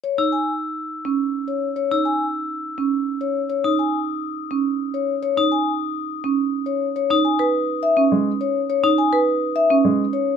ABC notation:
X:1
M:3/4
L:1/16
Q:1/4=104
K:C#m
V:1 name="Glockenspiel"
z e' z8 z2 | z e' z8 z2 | z d' z8 z2 | z d' z8 z2 |
z d' z8 z2 | z d' z8 z2 |]
V:2 name="Vibraphone"
c z g z6 z c z | c z g z6 z c z | c z g z6 z c z | c z g z6 z c z |
c z g z3 e z3 c z | c z g z3 e z3 c z |]
V:3 name="Marimba"
z D z4 z C z4 | z D z4 z C z4 | z D z4 z C z4 | z D z4 z C z4 |
z D z B z3 C z4 | z D z B z3 C z4 |]
V:4 name="Grand piano" clef=bass
z12 | z12 | z12 | z12 |
z8 G, z3 | z8 G, z3 |]